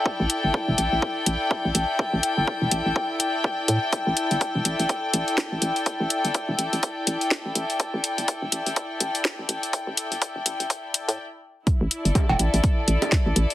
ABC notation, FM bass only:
X:1
M:4/4
L:1/16
Q:"Swing 16ths" 1/4=124
K:C
V:1 name="FM bass" clef=bass
z A,,, z G,,, z E,,, A,,, A,,, z2 A,,, z2 A,,, A,,, z | z A,,, z G,,, z E,,, A,,, A,,, z6 A,, z | z A,,, z G,,, z E,,, A,,, A,,, z2 A,,, z2 A,,, A,,, z | z A,,, z G,,, z E,,, A,,, A,,, z2 A,,, z2 A,,, A,,, z |
z A,,, z G,,, z E,,, A,,, A,,, z2 A,,, z2 A,,, A,,, z | z A,,, z G,,, z E,,, A,,, A,,, z3 A,, z4 | z A,,, z G,,, z E,,, A,,, A,,, z2 A,,, z2 A,,, A,,, z |]